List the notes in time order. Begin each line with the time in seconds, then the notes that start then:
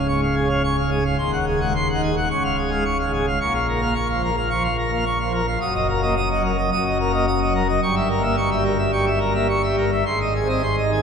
Already playing: C#1 C#2
0.08 G#2 C#6
0.23 F5
0.35 G#4
0.45 C#4
0.50 F5
0.64 C#6
0.77 F5
0.82 G#2
0.91 G#4
1.05 F5
1.19 D#1 D#2 C6
1.33 F#5
1.47 G#4
1.56 G#3
1.61 F#5
1.76 C6
1.89 F#5
1.94 D#3
2.03 G#4
2.17 F#5
2.31 C#1 C#2 C#6
2.44 F5
2.58 G#4
2.67 G#3
2.71 F5
2.85 C#6
2.99 F5
3.04 G#2
3.14 G#4
3.27 F5
3.41 A#1 A#2 C#6
3.54 F5
3.68 A#4
3.77 A#3
3.82 F5
3.95 C#6
4.09 F5
4.13 F3
4.23 A#4
4.37 F5
4.50 F3 C#6
4.64 F5
4.78 A#4
4.87 A#3
4.92 F5
5.06 C#6
5.20 F5
5.24 F3
5.34 A#4
5.48 F5
5.61 F#1 F#2 D#6
5.75 D#5
5.89 A#4
5.99 A#3 D#5
6.17 D#6
6.30 D#5
6.34 F#3
6.45 A#4
6.58 D#5
6.71 F#1 F#2 D#6
6.85 D#5
6.99 A#4
7.09 A#3
7.14 D#5
7.27 D#6
7.41 D#5
7.46 F#3
7.55 A#4
7.69 D#5
7.83 G1 G2 C#6
7.96 E5
8.10 A#4
8.19 A#3
8.23 E5
8.37 C#6
8.52 E5
8.56 G3
8.65 A#4
8.79 E5
8.92 G3 C#6
9.06 E5
9.20 A#4
9.30 A#3
9.35 E5
9.49 C#6
9.63 E5
9.68 G3
9.78 A#4
9.92 E5
10.06 G#1 G#2 C6
10.21 D#5
10.35 G#4
10.44 C4
10.49 D#5
10.63 C6
10.78 D#5
10.82 D#3
10.92 G#4